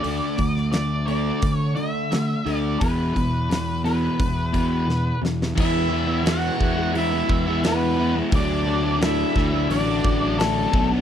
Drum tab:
CC |----------------|----------------|x---------------|----------------|
HH |o-o-o-o-o-o-o-o-|o-o-o-o-o-o-----|----o---o---o---|o---o---o---o---|
SD |---oo-------o---|----o-------o-oo|----o-------o---|----o-o-----o---|
BD |--o-----o-------|o-o-----o-o-----|o-----o---o-----|o-----o---o---o-|